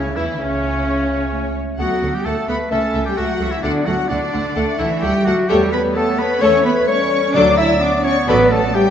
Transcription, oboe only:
Already playing: C#4
0.16 E4
0.40 C#4
1.80 F#4
2.15 G4
2.25 A4
2.49 B4
2.72 A4
3.06 G4
3.17 F#4
3.52 E4
3.63 D4
3.86 F#4
4.08 D4
4.79 E4
5.02 G4
5.25 F#4
5.49 G4
5.72 B4
5.96 A4
6.19 B4
6.42 C#5
6.66 B4
6.88 C#5
7.36 D5
7.58 E5
7.81 D5
8.04 C#5
8.28 B4
8.52 A4
8.74 G4

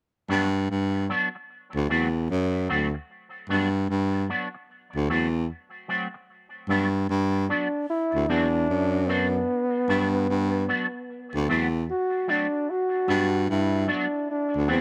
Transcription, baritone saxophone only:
0.30 G2
0.70 G2
1.76 D2
1.89 E2
2.30 F#2
2.70 D2
3.49 G2
3.89 G2
4.96 D2
5.10 E2
6.69 G2
7.09 G2
8.15 D2
8.29 E2
8.69 F#2
9.89 G2
10.29 G2
11.35 D2
11.49 E2
13.09 G2
13.49 G2
14.55 D2
14.70 E2

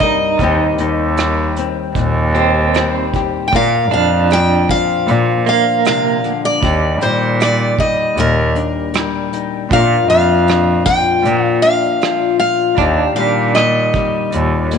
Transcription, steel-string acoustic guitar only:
0.00 D#5
3.48 G5
3.56 F5
3.93 F5
4.33 G5
4.71 F5
5.49 F5
5.87 F5
6.45 D5
7.02 C5
7.42 D5
7.80 D#5
8.20 A#4
9.73 F5
10.10 F5
10.86 G5
11.44 F5
11.62 F5
12.40 F5
13.16 F5
13.55 D#5

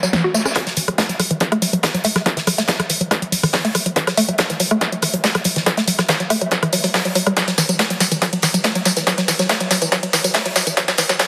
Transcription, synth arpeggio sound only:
0.03 F#3
0.13 F#3
0.24 F#4
0.35 A3
0.46 C#4
0.56 F#3
0.67 F#3
0.77 E3
0.88 F#3
0.98 A3
1.09 F#3
1.20 F#3
1.31 E3
1.41 F#3
1.52 A3
1.62 F#3
1.73 F#3
1.83 E3
1.94 F#3
2.05 A3
2.16 F#3
2.26 F#3
2.37 E3
2.47 F#3
2.58 A3
2.68 F#3
2.80 F#3
2.90 E3
3.01 F#3
3.11 A3
3.22 F#3
3.32 F#3
3.43 E3
3.54 F#3
3.65 A3
3.75 F#3
3.86 F#3
3.96 E3
4.07 F#3
4.17 A3
4.29 F#3
4.39 F#3
4.50 E3
4.60 F#3
4.71 A3
4.81 F#3
4.92 F#3
5.03 E3
5.14 F#3
5.24 A3
5.35 F#3
5.45 F#3
5.56 E3
5.66 F#3
5.78 A3
5.88 F#3
5.99 F#3
6.09 E3
6.20 F#3
6.30 A3
6.41 F#3
6.52 F#3
6.63 E3
6.73 F#3
6.84 F#3
6.94 F#3
7.05 F#3
7.15 F#3
7.27 G3
7.37 F#3
7.48 F#3
7.58 E3
7.69 F#3
7.79 A3
7.90 F#3
8.00 F#3
8.12 E3
8.22 F#3
8.33 F#3
8.43 E3
8.54 F#3
8.64 A3
8.75 F#3
8.86 F#3
8.97 E3
9.07 F#3
9.18 F#3
9.28 E3
9.39 F#3
9.49 A3
9.61 F#3
9.71 F#3
9.82 E3
9.92 F#3
10.03 F#3
10.13 E3
10.24 F#3
10.35 A3
10.46 F#3
10.56 F#3
10.67 E3
10.77 F#3
10.88 F#3
10.98 E3
11.09 F#3
11.20 F#3

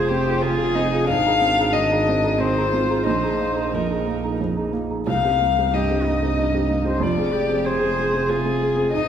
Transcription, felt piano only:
Already playing: F2 C3 C4 F4 G#4
0.11 C4
0.26 F4 G#4
0.42 C3
0.58 F4 G#4
0.75 C4
0.93 F4 G#4
1.10 G#2
1.26 D#4 G#4
1.41 C4
1.59 D#4 G#4
1.74 D#3
1.91 D#4 G#4
2.08 C4
2.24 D#4 G#4
2.40 D#3
2.58 D#4 G#4
2.73 C4
2.90 D#4 G#4
3.06 A#1
3.23 D#4 G#4
3.39 A#3
3.56 D#4 G#4
3.73 F2
3.91 D#4 G#4
4.07 A#3
4.24 D#4 G#4
4.41 F2
4.57 D#4 G#4
4.73 A#3
4.90 D#4 G#4
5.07 C2
5.24 C4 G4
5.40 A#3
5.57 C4 G4
5.73 G2
5.90 C4 G4
6.06 A#3
6.22 C4 G4
6.39 G2
6.53 C4 G4
6.69 A#3
6.84 C4 G4
7.00 F2
7.17 C4 G#4
7.33 G#3
7.49 C4 G#4
7.64 C3
7.80 C4 G#4
7.98 G#3
8.13 C4 G#4
8.29 C3
8.45 C4 G#4
8.61 G#3
8.76 C4 G#4
8.93 G#2

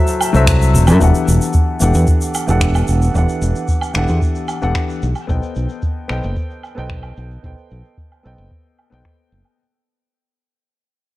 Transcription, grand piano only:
Already playing: F#3 F#4 A4 C5 E5
0.33 F#3 F#4 A4 C5 E5
0.99 E3 B3 D4 G4 A4 F#5
1.80 E3 B3 D4 G4 A4 F#5
2.47 E3 B3 D4 G4 A4 F#5
3.14 E3 B3 D4 G4 A4 F#5
3.94 E3 B3 D4 G4 A4 F#5
4.62 E3 B3 D4 G4 A4 F#5
5.27 B3 A4 C5 D#5 G5
6.08 B3 A4 C5 D#5 G5
6.75 B3 A4 C5 D#5 G5
7.43 B3 A4 C5 D#5 G5
8.23 B3 A4 C5 D#5 G5
8.90 B3 A4 C5 D#5 G5

